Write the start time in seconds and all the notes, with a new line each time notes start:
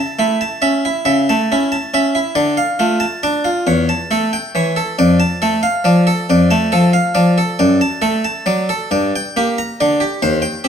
Already playing: A5
0.19 A3 E4
0.41 A5
0.62 C#4 E5
0.85 E4
1.05 C#3 E5
1.29 A3 A5
1.52 C#4 E4
1.72 A5
1.94 C#4 E5
2.15 E4
2.35 D3 D5
2.57 F5
2.79 A3 F4
3.00 A5
3.23 D4 D5
3.45 F4
3.67 E2 C#5
3.89 A5
4.11 A3 A4
4.33 G5
4.55 E3 C#5
4.76 A4
4.99 F2 D5
5.20 A5
5.42 A3 A4
5.63 F5
5.84 F3 D5
6.07 A4
6.30 F2 D5
6.51 A3 A5
6.72 F3 A4
6.93 F5
7.15 F3 D5
7.38 A4
7.59 F#2 D5
7.81 A5
8.02 A3 A4
8.25 A5
8.46 F#3 D5
8.69 A4
8.91 G2 D5
9.16 G5
9.37 A#3 G4
9.58 A#5
9.80 D3 D5
10.00 G4
10.22 D#2 C5
10.42 G5
10.64 C4 G4